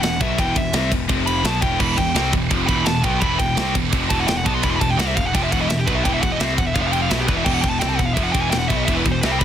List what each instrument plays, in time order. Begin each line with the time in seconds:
0.02 picked electric bass E1, overdriven electric guitar E2 B2, lead electric guitar F#5, snare, ride
0.20 picked electric bass B1, overdriven electric guitar B2 F#3 B3, lead electric guitar E5, kick, ride
0.38 picked electric bass E1, overdriven electric guitar E2 B2 E3, lead electric guitar G5, kick, ride
0.56 picked electric bass E1, overdriven electric guitar E2 B2, lead electric guitar E5, kick, ride
0.73 picked electric bass C2, overdriven electric guitar C3 G3 C4, snare, ride
0.91 picked electric bass E1, overdriven electric guitar E2 B2, kick, ride
1.09 picked electric bass F1, overdriven electric guitar F2 C3 F3, kick, ride
1.26 lead electric guitar B5, ride
1.44 picked electric bass B1, overdriven electric guitar B2 F#3 B3, lead electric guitar A5, snare, ride
1.62 picked electric bass E1, overdriven electric guitar E2 B2 E3, lead electric guitar G5, kick, ride
1.79 picked electric bass E1, overdriven electric guitar E2 B2 E3, lead electric guitar B5, kick, crash
1.97 picked electric bass E1, overdriven electric guitar E2 B2, lead electric guitar G5, kick, ride
2.15 picked electric bass C2, overdriven electric guitar C3 G3 C4, snare, ride
2.33 picked electric bass E1, overdriven electric guitar E2 B2, kick, ride
2.50 picked electric bass F1, overdriven electric guitar F2 C3 F3, kick, ride
2.67 picked electric bass E1, overdriven electric guitar E2 B2 E3, lead electric guitar B5, kick, ride
2.85 picked electric bass E1, overdriven electric guitar E2 B2, lead electric guitar A5, snare, ride
3.03 picked electric bass B1, overdriven electric guitar B2 F#3 B3, lead electric guitar G5, kick, ride
3.20 picked electric bass E1, overdriven electric guitar E2 B2 E3, lead electric guitar B5, kick, ride
3.38 picked electric bass E1, overdriven electric guitar E2 B2, lead electric guitar G5, kick, ride
3.56 picked electric bass C2, overdriven electric guitar C3 G3 C4, snare, ride
3.74 picked electric bass E1, overdriven electric guitar E2 B2, kick, ride
3.91 picked electric bass F1, overdriven electric guitar F2 C3 F3, kick, ride
4.09 picked electric bass E1, overdriven electric guitar E2 B2 E3, lead electric guitar A5, kick, ride
4.19 lead electric guitar F#5
4.27 picked electric bass E1, overdriven electric guitar E2 B2, lead electric guitar G5, snare, ride
4.37 lead electric guitar F#5
4.44 picked electric bass B1, overdriven electric guitar B2 F#3 B3, lead electric guitar A5, kick, ride
4.54 lead electric guitar C6
4.61 picked electric bass E1, overdriven electric guitar E2 B2 E3, lead electric guitar B5, kick, ride
4.69 lead electric guitar C6
4.76 overdriven electric guitar E2 B2, lead electric guitar B5
4.81 picked electric bass E1, lead electric guitar A5, kick, ride
4.90 lead electric guitar G5
4.97 picked electric bass C2, overdriven electric guitar C3 G3 C4, lead electric guitar F#5, snare, ride
5.08 lead electric guitar E5
5.16 picked electric bass E1, overdriven electric guitar E2 B2, lead electric guitar F5, kick, ride
5.26 lead electric guitar F#5
5.34 picked electric bass F1, overdriven electric guitar F2 C3 F3, lead electric guitar G5, kick, ride
5.43 lead electric guitar E5
5.51 picked electric bass E1, overdriven electric guitar E2 B2 E3, lead electric guitar F#5, kick, ride
5.61 lead electric guitar D#5
5.69 picked electric bass E1, overdriven electric guitar E2 B2, lead electric guitar E5, snare, ride
5.78 lead electric guitar G4
5.86 picked electric bass B1, overdriven electric guitar B2 F#3 B3, lead electric guitar B4, kick, ride
5.95 lead electric guitar E5
6.05 picked electric bass E1, overdriven electric guitar E2 B2 E3, lead electric guitar G5, kick, ride
6.14 lead electric guitar E5
6.22 picked electric bass E1, overdriven electric guitar E2 B2, lead electric guitar F#5, kick, ride
6.32 lead electric guitar D#5
6.40 picked electric bass C2, overdriven electric guitar C3 G3 C4, lead electric guitar E5, snare, ride
6.58 picked electric bass E1, overdriven electric guitar E2 B2, lead electric guitar F#5, kick, ride
6.67 lead electric guitar E5
6.75 picked electric bass F1, overdriven electric guitar F2 C3 F3, lead electric guitar F5, kick, ride
6.82 lead electric guitar E5
6.87 lead electric guitar F5
6.93 lead electric guitar G5, ride
7.02 lead electric guitar F5
7.10 picked electric bass B1, overdriven electric guitar B2 F#3 B3, lead electric guitar E5, snare, ride
7.19 lead electric guitar G4
7.28 picked electric bass E1, overdriven electric guitar E2 B2 E3, lead electric guitar B4, kick, ride
7.37 lead electric guitar E5
7.44 picked electric bass E1, overdriven electric guitar E2 B2 E3, lead electric guitar G5, kick, crash
7.54 lead electric guitar F#5
7.62 picked electric bass E1, overdriven electric guitar E2 B2, lead electric guitar G5, kick, ride
7.69 lead electric guitar A5
7.79 picked electric bass C2, overdriven electric guitar C3 G3 C4, lead electric guitar G5, snare, ride
7.89 lead electric guitar A5
7.97 picked electric bass E1, overdriven electric guitar E2 B2, lead electric guitar F#5, kick, ride
8.06 lead electric guitar F5
8.14 picked electric bass F1, overdriven electric guitar F2 C3 F3, lead electric guitar E5, kick, ride
8.23 lead electric guitar F#5
8.32 picked electric bass E1, overdriven electric guitar E2 B2 E3, lead electric guitar G5, kick, ride
8.41 lead electric guitar G#5
8.50 picked electric bass E1, overdriven electric guitar E2 B2, lead electric guitar G5, snare, ride
8.58 lead electric guitar F#5
8.68 picked electric bass B1, overdriven electric guitar B2 F#3 B3, lead electric guitar E5, kick, ride
8.77 lead electric guitar D#5
8.85 picked electric bass E1, overdriven electric guitar E2 B2 E3, lead electric guitar E5, kick, ride
8.94 lead electric guitar B4
9.05 picked electric bass E1, overdriven electric guitar E2 B2, kick, ride
9.12 lead electric guitar C5
9.21 picked electric bass C2, overdriven electric guitar C3 G3 C4, lead electric guitar B4, snare, ride
9.26 lead electric guitar E5
9.32 lead electric guitar G5
9.39 picked electric bass E1, overdriven electric guitar E2 B2, lead electric guitar B5, kick, ride